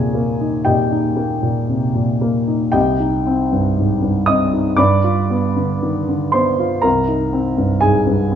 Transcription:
grand piano
Already playing: D#2 A#2 C3 A#3 D#4 G#4 A#4 G5 G#5 A#5
0.14 A#3
0.41 D#4
0.65 A#2 G4 D#5 G5
0.92 D#4
1.16 A#3
1.43 A#2
1.69 C3
1.95 A#2
2.21 A#3
2.48 D#4
2.72 C2 G4 D#5 G5
3.00 D#4
3.27 C4
3.52 G2
3.77 G#2
4.02 G2
4.26 C4 D#5 D#6
4.53 D#4
4.77 G2 D5 B5 D6
5.04 F4
5.30 B3
5.56 D3
5.83 D#3
6.08 D3
6.32 B3 C5 C6
6.59 F4
6.82 C2 A#4 A#5
7.08 D#4
7.33 C4
7.58 G2
7.81 G#2 G#4 G#5
8.07 G2
8.32 C4

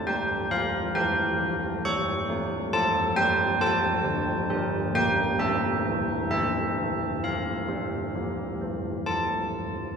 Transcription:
church bells
Already playing: A4
0.07 G3 G5
0.51 F3 F5
0.95 E3 A4 G5
1.40 F3
1.85 G3 C#6
2.29 A3
2.73 F3 A5
3.16 G3 G5
3.61 F3 A4 A5
4.04 D3
4.50 G3 A#4
4.95 A#3 G5
5.39 A3 A4 E5
5.85 E3
6.30 D3 A4 E5
6.76 E3
7.23 F3 F5
7.68 G3
8.15 F3
8.61 E3
9.06 F3 A5

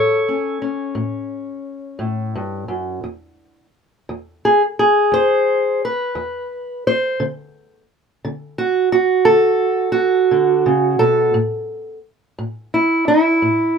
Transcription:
steel-string acoustic guitar
Already playing: A2 A4 C#5
0.28 C#4
0.62 C#4
0.95 A2
1.99 A2
2.36 G2
2.68 F#2
3.04 E2
4.09 E2
4.45 G#4
4.79 G#4
5.12 E2 C5
5.85 B4
6.15 E2
6.87 C5
7.20 D3
8.25 D3
8.58 F#4
8.92 F#4
9.25 D3 A4
9.92 F#4
10.31 D3
10.66 C#3
10.99 B2 A4
11.34 A2
12.39 A2
12.74 E4
13.08 E4
13.42 A2

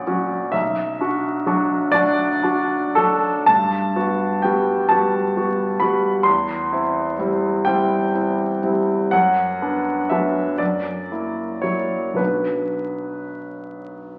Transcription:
grand piano
Already playing: F#3 C#4 F#4 D5
0.07 F#3 C#4 F#4
0.52 B1 E5
1.01 D4 F#4
1.46 F#3 D4 F#4
1.92 F#3 D4 F#4 D5
2.43 D4 F#4
2.95 F#3 D4 F#4 A4
3.46 G2 A5
3.96 B3 F#4
4.42 G3 B3 F#4 G5
4.89 G3 B3 F#4 A5
5.37 B3 F#4
5.80 G3 B3 F#4 B5
6.23 E2 C6
6.72 C4 E4
7.19 G3 C4 E4
7.65 G3 C4 E4 G5
8.14 C4 E4
8.64 G3 C4 E4
9.11 F#2 F#5
9.62 B3 D4
10.10 F#3 B3 D4 E5
10.58 F#2 D5
11.11 A#3 E4
11.62 F#3 A#3 E4 C#5
12.14 B1 F#3 B3 D4 B4

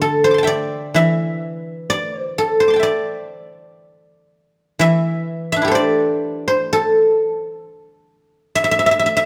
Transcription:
guzheng
Already playing: D3 C5 D5 E5
0.01 A4
0.24 C5
0.31 C6 D6
0.38 A5
0.43 E5 G5
0.47 D5
0.94 E3 E5
1.90 D5
2.19 C5
2.38 A4
2.60 C5
2.68 C6 D6
2.73 G5 A5
2.80 D5 E5
4.79 E3 E5
5.52 E5
5.56 D4
5.62 E4 G4
5.68 A4 C5
5.75 D5
6.48 C5
6.73 A4
8.55 E5
8.64 E5
8.71 E5
8.79 E5
8.86 E5
8.91 E5
8.99 E5
9.06 E5
9.17 E5

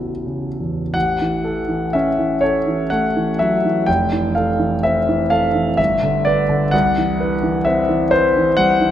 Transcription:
grand piano
Already playing: A1 E2 C#3 B3 E4 F#4
0.25 C#3
0.61 E2
0.94 A1 F#5
1.21 E3
1.44 A4
1.69 E3
1.93 C#4 E5
2.19 E3
2.41 A4 C#5
2.68 E3
2.90 A3 F#5
3.17 E3
3.39 F#3 E5
3.65 E3
3.86 F1 G5
4.13 E3
4.35 A4 F5
4.60 E3
4.83 C4 E5
5.09 E3
5.30 A4 F5
5.55 E3
5.77 G1 E5
6.03 D3
6.25 B4 D5
6.49 D3
6.71 C2 F#5
6.98 E3
7.20 B4
7.43 E3
7.65 C4 E5
7.89 E3
8.11 B4 C5
8.37 E3
8.57 G3 F#5
8.81 E3

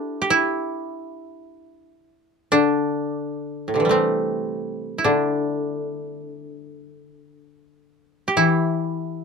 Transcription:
koto
Already playing: D4 E4 G4 A4 C5 D5 E5
0.22 G4
0.30 E4
2.52 D3 D4
3.68 A2
3.74 C3 D3
3.80 E3
3.85 G3
3.89 A3 C4
4.98 E4
5.04 D3 D4
8.28 G4
8.37 E3 E4

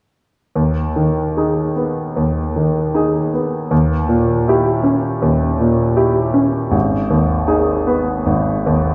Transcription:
grand piano
0.55 D#2
0.96 D#3
1.37 D#4 G#4
1.76 B3
2.16 D#2
2.56 D#3
2.94 D#4 G#4
3.34 B3
3.71 D#2
4.09 A#2
4.48 E4 G4
4.83 C#4
5.22 D#2
5.60 A#2
5.96 E4 G4
6.34 C#4
6.71 G#1
7.10 D#2
7.48 D#4 G#4
7.87 B3
8.26 G#1
8.66 D#2

